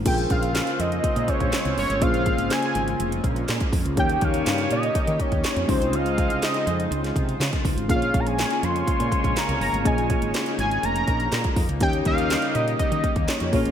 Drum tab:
CC |x---------------|----------------|----------------|----------------|
HH |xxxxxxxxxxxxxxox|xxxxxxxxxxxxxxox|xxxxxxxxxxxxxxox|xxxxxxxxxxxxxxox|
SD |----oo------o---|----oo------o---|----oo------o---|----oo---o--oo--|
BD |o-o-----o-oo----|o-o-------o--oo-|o-o-----o-oo--o-|--o-------o--oo-|

CC |----------------|----------------|----------------|
HH |xxxxxxxxxxxxxxox|xxxxxxxxxxxxxxox|xxxxxxxxxxxxxxox|
SD |----oo------o---|----oo------o---|----oo------o---|
BD |o-o-----o-oo----|o-o-------o--oo-|o-o-----o-oo--o-|